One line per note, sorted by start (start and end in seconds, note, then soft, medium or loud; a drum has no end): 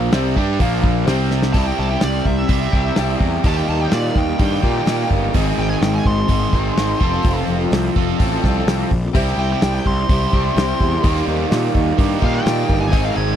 0.00 0.12 A#2 loud
0.00 0.12 A#2 medium
0.00 0.12 F3 loud
0.00 0.13 F3 loud
0.00 0.13 A#3 loud
0.10 0.34 C2 medium
0.10 0.36 C3 loud
0.10 0.36 C3 medium
0.10 0.35 G3 loud
0.10 0.36 G3 loud
0.10 0.36 C4 loud
0.10 0.37 C4 medium
0.10 0.31 G4 loud
0.10 0.31 C5 loud
0.10 0.32 E5 loud
0.10 snare loud
0.10 open hi-hat medium
0.33 0.59 G2 medium
0.33 0.59 G3 medium
0.33 0.60 G3 medium
0.33 0.59 D4 medium
0.33 0.54 G4 medium
0.33 0.60 G4 loud
0.33 0.54 C5 medium
0.33 0.55 E5 medium
0.33 kick medium
0.38 0.60 D4 loud
0.38 0.60 G4 loud
0.57 1.05 A#1 medium
0.57 1.07 A#2 medium
0.57 1.06 A#2 loud
0.57 1.07 F3 loud
0.57 1.07 F3 medium
0.57 0.78 F4 medium
0.57 0.78 A#4 medium
0.57 0.78 F5 medium
0.57 kick loud
0.57 open hi-hat medium
0.61 1.07 A#3 medium
0.61 1.07 A#3 loud
0.80 1.01 F4 medium
0.80 1.01 A#4 medium
0.80 1.02 F5 medium
0.80 kick medium
1.04 1.52 C2 medium
1.04 1.52 C3 medium
1.04 1.53 C3 medium
1.04 1.53 G3 medium
1.04 1.53 C4 medium
1.04 1.25 G4 loud
1.04 1.25 C5 loud
1.04 1.26 E5 loud
1.04 snare loud
1.04 open hi-hat medium
1.09 1.54 G3 medium
1.09 1.55 C4 loud
1.27 1.48 G4 medium
1.27 1.49 C5 medium
1.27 1.49 E5 medium
1.27 snare medium
1.43 snare medium
1.53 1.71 C2 medium
1.53 1.78 C3 medium
1.53 2.47 C3 medium
1.53 1.77 G3 medium
1.53 2.49 G3 medium
1.53 1.78 C4 medium
1.53 2.49 C4 medium
1.53 1.79 E4 medium
1.53 1.79 G4 medium
1.53 1.67 A5 medium
1.53 kick loud
1.53 open hi-hat medium
1.57 2.50 E4 medium
1.57 2.52 G4 medium
1.67 1.79 G5 medium
1.78 1.95 C2 medium
1.78 1.90 G3 medium
1.78 1.91 C4 medium
1.78 1.91 E4 medium
1.78 1.89 G4 medium
1.78 1.90 A5 medium
1.90 2.02 C4 soft
1.90 2.03 E4 soft
1.90 2.02 G4 soft
1.90 2.02 G5 medium
2.01 2.20 C2 medium
2.01 2.26 C3 medium
2.01 2.25 G3 medium
2.01 2.26 C4 medium
2.01 2.27 E4 medium
2.01 2.27 G4 medium
2.01 2.26 D5 medium
2.01 snare loud
2.01 open hi-hat medium
2.25 2.43 C2 medium
2.25 2.38 G3 medium
2.25 2.39 C4 medium
2.25 2.39 E4 medium
2.25 2.38 G4 medium
2.25 3.19 E5 medium
2.25 kick medium
2.39 2.64 C4 soft
2.39 2.63 E4 soft
2.39 2.61 G4 medium
2.49 2.66 C2 medium
2.49 3.43 C3 medium
2.49 3.43 G3 medium
2.49 3.44 C4 medium
2.49 3.44 E4 medium
2.49 3.45 G4 medium
2.49 kick loud
2.49 open hi-hat medium
2.62 2.74 C4 soft
2.62 2.75 E4 soft
2.62 2.74 G4 soft
2.72 2.90 C2 medium
2.72 2.95 C3 medium
2.72 2.97 G3 medium
2.72 2.97 C4 medium
2.72 2.95 E4 medium
2.72 2.95 G4 medium
2.72 kick medium
2.76 2.98 E4 medium
2.76 2.98 G4 medium
2.96 3.15 C2 medium
2.96 3.21 C3 medium
2.96 3.20 G3 medium
2.96 3.21 C4 medium
2.96 3.22 E4 medium
2.96 3.22 G4 medium
2.96 snare loud
2.96 open hi-hat medium
3.21 3.37 E2 medium
3.21 3.33 G3 medium
3.21 3.33 C4 medium
3.21 3.32 E4 medium
3.21 3.30 G4 medium
3.21 kick medium
3.31 3.45 C4 soft
3.31 3.45 E4 soft
3.31 3.44 G4 medium
3.44 3.61 D#2 loud
3.44 3.68 D#3 medium
3.44 4.38 D#3 medium
3.44 3.66 G3 medium
3.44 4.39 G3 medium
3.44 3.67 A#3 medium
3.44 4.39 A#3 medium
3.44 3.68 D#4 medium
3.44 4.40 D#4 medium
3.44 3.69 G4 medium
3.44 3.57 A5 loud
3.44 kick loud
3.44 open hi-hat medium
3.48 4.40 G4 loud
3.57 3.68 G5 medium
3.57 snare soft
3.68 3.85 D#2 medium
3.68 3.80 G3 medium
3.68 3.81 A#3 medium
3.68 3.79 D#4 medium
3.68 3.78 G4 medium
3.68 3.81 A5 medium
3.79 3.91 A#3 soft
3.79 3.92 D#4 soft
3.79 3.92 G4 medium
3.79 3.92 G5 medium
3.91 4.09 A#2 medium
3.91 4.16 D#3 medium
3.91 4.14 G3 medium
3.91 4.15 A#3 medium
3.91 4.16 D#4 medium
3.91 4.17 G4 medium
3.91 4.16 D5 medium
3.91 snare loud
3.91 open hi-hat medium
4.15 4.33 D#2 medium
4.15 4.28 G3 medium
4.15 4.28 A#3 medium
4.15 4.27 D#4 medium
4.15 4.25 G4 medium
4.15 5.09 G5 medium
4.15 kick medium
4.27 4.51 A#3 soft
4.27 4.50 D#4 soft
4.27 4.48 G4 medium
4.39 4.57 G2 medium
4.39 5.33 D#3 medium
4.39 5.33 G3 medium
4.39 5.34 A#3 medium
4.39 5.35 D#4 medium
4.39 5.35 G4 medium
4.39 kick loud
4.39 open hi-hat medium
4.53 4.61 A#3 soft
4.61 4.80 A#2 medium
4.61 4.85 G3 medium
4.61 4.85 A#3 medium
4.61 4.86 D#4 medium
4.61 4.87 G4 medium
4.61 kick medium
4.66 4.84 D#3 medium
4.85 5.03 A#2 medium
4.85 5.10 D#3 medium
4.85 5.08 G3 medium
4.85 5.09 A#3 medium
4.85 5.10 D#4 medium
4.85 5.11 G4 medium
4.85 snare loud
4.85 open hi-hat medium
5.09 5.28 G1 medium
5.09 5.22 G3 medium
5.09 5.23 A#3 medium
5.09 5.22 D#4 medium
5.09 5.20 G4 medium
5.09 kick medium
5.22 5.34 A#3 soft
5.22 5.34 D#4 medium
5.22 5.34 G4 medium
5.34 5.51 G#1 loud
5.34 6.52 G#2 medium
5.34 6.26 G#2 medium
5.34 6.28 D#3 medium
5.34 6.52 D#3 medium
5.34 5.56 G#3 medium
5.34 6.28 G#3 medium
5.34 5.57 C4 medium
5.34 6.30 C4 medium
5.34 5.59 D#4 medium
5.34 6.30 D#4 medium
5.34 5.59 G#4 loud
5.34 6.30 G#4 medium
5.34 kick loud
5.34 open hi-hat medium
5.57 5.75 G#1 medium
5.57 5.70 G#3 medium
5.57 5.70 C4 medium
5.57 5.70 D#4 medium
5.57 5.68 G#4 medium
5.57 5.69 G5 medium
5.69 5.82 C4 soft
5.69 5.82 D#4 soft
5.69 5.82 G#4 medium
5.69 5.81 G#5 medium
5.81 5.98 G#1 medium
5.81 6.04 G#3 medium
5.81 6.05 C4 medium
5.81 6.06 D#4 medium
5.81 6.07 G#4 medium
5.81 5.94 G5 medium
5.81 snare loud
5.81 open hi-hat medium
5.95 6.06 G#5 medium
6.05 6.22 G#1 medium
6.05 6.18 G#3 medium
6.05 6.18 C4 medium
6.05 6.19 D#4 medium
6.05 6.17 G#4 medium
6.05 7.45 C6 loud
6.05 kick medium
6.19 6.43 C4 soft
6.19 6.42 D#4 soft
6.19 6.40 G#4 medium
6.28 6.46 G#1 medium
6.28 6.98 G#2 medium
6.28 6.99 D#3 medium
6.28 6.99 G#3 medium
6.28 7.01 C4 medium
6.28 7.00 D#4 medium
6.28 kick loud
6.28 open hi-hat medium
6.32 7.01 G#4 medium
6.41 6.54 C4 soft
6.41 6.54 D#4 soft
6.41 6.53 G#4 medium
6.53 6.70 G#1 loud
6.53 6.75 G#2 medium
6.53 6.76 D#3 medium
6.53 6.76 G#3 medium
6.53 6.76 C4 medium
6.53 6.77 D#4 medium
6.53 6.78 G#4 medium
6.53 kick medium
6.76 6.93 G#1 medium
6.76 6.99 G#2 medium
6.76 7.00 D#3 medium
6.76 7.00 G#3 medium
6.76 7.00 C4 medium
6.76 7.01 D#4 medium
6.76 7.02 G#4 medium
6.76 snare loud
6.76 open hi-hat medium
7.00 7.17 F1 medium
7.00 7.94 F3 medium
7.00 7.12 F3 medium
7.00 7.99 C4 medium
7.00 7.13 C4 medium
7.00 7.95 F4 medium
7.00 7.13 F4 medium
7.00 7.12 A4 medium
7.00 7.95 A4 loud
7.00 kick medium
7.13 7.23 C4 medium
7.13 7.23 F4 medium
7.13 7.24 A4 medium
7.23 7.41 F1 loud
7.23 7.46 F3 medium
7.23 7.48 C4 medium
7.23 7.48 F4 medium
7.23 7.49 A4 medium
7.23 kick loud
7.23 open hi-hat medium
7.47 7.65 F1 medium
7.47 7.60 F3 medium
7.47 7.61 C4 medium
7.47 7.60 F4 medium
7.47 7.58 A4 medium
7.59 7.71 C4 medium
7.59 7.72 F4 medium
7.59 7.71 A4 medium
7.71 7.89 C2 medium
7.71 7.94 F3 medium
7.71 7.95 C4 medium
7.71 7.96 F4 loud
7.71 7.96 A4 medium
7.71 snare loud
7.71 open hi-hat medium
7.95 8.13 F1 medium
7.95 8.07 F3 medium
7.95 8.08 C4 medium
7.95 8.91 C4 medium
7.95 8.08 F4 medium
7.95 8.90 F4 medium
7.95 8.89 A4 medium
7.95 8.07 A4 medium
7.95 kick medium
8.00 8.91 F3 medium
8.08 8.33 C4 soft
8.08 8.32 F4 medium
8.08 8.30 A4 medium
8.20 8.37 A1 medium
8.20 8.42 F3 medium
8.20 8.42 C4 medium
8.20 8.42 F4 medium
8.20 8.41 A4 medium
8.20 kick loud
8.20 open hi-hat medium
8.31 8.44 C4 soft
8.31 8.44 F4 medium
8.31 8.43 A4 medium
8.42 8.60 C2 medium
8.42 8.66 F3 medium
8.42 8.68 C4 medium
8.42 8.68 F4 medium
8.42 8.89 A4 medium
8.42 kick medium
8.42 snare soft
8.47 8.68 A4 medium
8.66 8.83 C2 medium
8.66 8.90 F3 medium
8.66 8.91 C4 medium
8.66 8.92 F4 medium
8.66 8.92 A4 medium
8.66 snare loud
8.66 open hi-hat medium
8.91 9.08 A#1 medium
8.91 9.03 F3 medium
8.91 9.03 C4 medium
8.91 9.02 F4 medium
8.91 9.01 A4 medium
8.91 kick medium
9.02 9.14 C4 medium
9.02 9.15 F4 medium
9.02 9.14 A4 medium
9.13 9.32 C2 loud
9.13 9.38 C3 medium
9.13 10.08 C3 medium
9.13 9.37 G3 medium
9.13 10.11 G3 medium
9.13 9.39 C4 loud
9.13 9.39 E4 medium
9.13 9.33 G4 loud
9.13 9.39 G4 loud
9.13 9.33 C5 loud
9.13 9.34 E5 loud
9.13 kick loud
9.13 open hi-hat medium
9.17 10.09 C4 medium
9.17 10.09 E4 medium
9.17 10.13 G4 loud
9.27 snare soft
9.36 9.54 C2 medium
9.36 9.50 G3 medium
9.36 9.51 C4 medium
9.36 9.51 E4 medium
9.36 9.56 G4 medium
9.36 9.57 E5 medium
9.36 9.50 G5 medium
9.42 9.49 G4 medium
9.50 9.62 C4 soft
9.50 9.61 E4 soft
9.50 9.62 G4 soft
9.50 9.61 G5 medium
9.61 9.79 C2 medium
9.61 9.85 C3 medium
9.61 9.83 G3 medium
9.61 9.84 C4 medium
9.61 9.85 E4 medium
9.61 9.80 G4 medium
9.61 9.85 G4 medium
9.61 9.81 C5 medium
9.61 9.73 G5 medium
9.61 9.81 G5 medium
9.61 snare loud
9.61 open hi-hat medium
9.75 9.86 G5 medium
9.84 10.03 C2 medium
9.84 9.97 G3 medium
9.84 9.97 C4 medium
9.84 9.97 E4 medium
9.84 10.03 G4 medium
9.84 9.96 G4 medium
9.84 10.04 C5 medium
9.84 10.04 E5 medium
9.84 11.24 C6 loud
9.84 kick medium
9.97 10.22 C4 medium
9.97 10.21 E4 medium
9.97 10.19 G4 medium
10.08 10.26 C2 medium
10.08 11.03 C3 medium
10.08 11.03 G3 medium
10.08 10.27 G4 medium
10.08 10.28 C5 medium
10.08 10.28 E5 medium
10.08 kick loud
10.08 open hi-hat medium
10.12 11.04 C4 medium
10.12 11.04 E4 medium
10.12 11.05 G4 medium
10.20 10.32 C4 soft
10.20 10.33 E4 soft
10.20 10.32 G4 soft
10.30 10.50 C2 medium
10.30 10.56 G3 medium
10.30 10.56 C4 medium
10.30 10.50 G4 medium
10.30 10.51 C5 medium
10.30 10.51 G5 medium
10.30 kick medium
10.34 10.55 C3 medium
10.34 10.56 E4 medium
10.34 10.56 G4 medium
10.55 10.72 C2 medium
10.55 10.80 C3 medium
10.55 10.79 G3 medium
10.55 10.81 C4 medium
10.55 10.81 E4 loud
10.55 10.75 G4 loud
10.55 10.81 G4 medium
10.55 10.75 C5 loud
10.55 10.75 E5 loud
10.55 snare loud
10.55 open hi-hat medium
10.78 10.97 E2 medium
10.78 10.92 G3 medium
10.78 10.93 C4 medium
10.78 10.98 G4 medium
10.78 10.99 C5 medium
10.78 10.99 E5 loud
10.78 kick medium
10.83 10.92 E4 medium
10.83 10.91 G4 medium
10.92 11.04 C4 medium
10.92 11.05 E4 medium
10.92 11.04 G4 medium
11.01 11.21 D#2 loud
11.01 11.27 D#3 medium
11.01 11.96 D#3 medium
11.01 11.25 G3 medium
11.01 11.26 A#3 loud
11.01 11.21 G4 loud
11.01 11.22 A#4 loud
11.01 11.22 D#5 loud
11.01 kick loud
11.01 open hi-hat medium
11.05 11.97 G3 medium
11.05 11.98 A#3 loud
11.05 11.27 D#4 loud
11.05 11.98 D#4 medium
11.05 11.28 G4 medium
11.05 11.99 G4 medium
11.16 snare soft
11.26 11.44 D#2 medium
11.26 11.39 G3 medium
11.26 11.39 A#3 medium
11.26 11.38 D#4 medium
11.26 11.45 G4 medium
11.26 11.36 G4 medium
11.26 11.46 A#4 medium
11.26 11.46 C5 medium
11.37 11.51 A#3 medium
11.37 11.51 D#4 medium
11.37 11.50 G4 medium
11.48 11.68 A#2 medium
11.48 11.75 D#3 medium
11.48 11.69 G4 medium
11.48 11.69 A#4 medium
11.48 11.70 D#5 medium
11.48 snare loud
11.48 open hi-hat medium
11.52 11.73 G3 loud
11.52 11.74 A#3 medium
11.52 11.74 D#4 medium
11.52 11.76 G4 loud
11.73 11.92 D#2 medium
11.73 11.86 G3 medium
11.73 11.87 A#3 medium
11.73 11.86 D#4 medium
11.73 11.93 G4 medium
11.73 11.93 A#4 medium
11.73 11.94 D#5 medium
11.73 kick medium
11.77 11.85 G4 medium
11.86 12.11 A#3 medium
11.86 12.11 D#4 medium
11.86 12.09 G4 medium
11.97 12.15 G2 medium
11.97 12.91 D#3 medium
11.97 12.92 G3 medium
11.97 12.92 A#3 medium
11.97 12.92 D#4 medium
11.97 12.17 G4 medium
11.97 12.92 G4 loud
11.97 12.17 A#4 medium
11.97 12.17 D#5 medium
11.97 kick loud
11.97 open hi-hat medium
12.10 12.22 A#3 soft
12.10 12.23 D#4 soft
12.10 12.22 G4 soft
12.20 12.39 A#2 loud
12.20 12.45 G3 medium
12.20 12.45 A#3 medium
12.20 12.40 G4 medium
12.20 12.44 G4 medium
12.20 12.40 A#4 medium
12.20 12.41 D#5 loud
12.20 12.34 F5 medium
12.20 kick loud
12.24 12.43 D#3 medium
12.24 12.46 D#4 medium
12.24 12.46 G4 medium
12.35 12.80 G5 medium
12.43 12.62 A#2 medium
12.43 12.69 D#3 medium
12.43 12.67 G3 medium
12.43 12.68 A#3 medium
12.43 12.63 G4 loud
12.43 12.63 A#4 medium
12.43 12.64 D#5 loud
12.43 snare loud
12.43 open hi-hat medium
12.47 12.69 D#4 medium
12.47 12.70 G4 medium
12.67 12.93 G1 medium
12.67 12.81 G3 medium
12.67 12.81 A#3 medium
12.67 12.81 D#4 medium
12.67 12.87 G4 medium
12.67 12.88 A#4 medium
12.67 12.88 D#5 medium
12.67 kick medium
12.72 12.79 G4 medium
12.81 12.93 A#3 soft
12.81 12.92 D#4 soft
12.81 12.93 G4 medium
12.81 13.04 G#5 medium
12.90 13.10 G#1 loud
12.90 13.16 G#2 medium
12.90 13.36 G#2 medium
12.90 13.16 D#3 medium
12.90 13.36 D#3 loud
12.90 13.14 G#3 medium
12.90 13.36 G#3 medium
12.90 13.16 C4 medium
12.90 13.16 D#4 loud
12.90 13.11 G#4 loud
12.90 13.17 G#4 medium
12.90 13.11 C5 medium
12.90 13.12 D#5 loud
12.90 kick loud
12.90 open hi-hat medium
12.95 13.36 C4 medium
12.95 13.36 D#4 medium
12.95 13.36 G#4 loud
13.05 13.16 F5 medium
13.14 13.33 G#1 medium
13.14 13.28 G#3 medium
13.14 13.28 C4 medium
13.14 13.27 D#4 medium
13.14 13.34 G#4 medium
13.14 13.35 C5 medium
13.14 13.35 D#5 medium
13.14 13.36 G#5 medium
13.19 13.26 G#4 medium
13.27 13.36 G#3 soft
13.27 13.36 C4 medium
13.27 13.36 D#4 medium
13.27 13.36 G#4 medium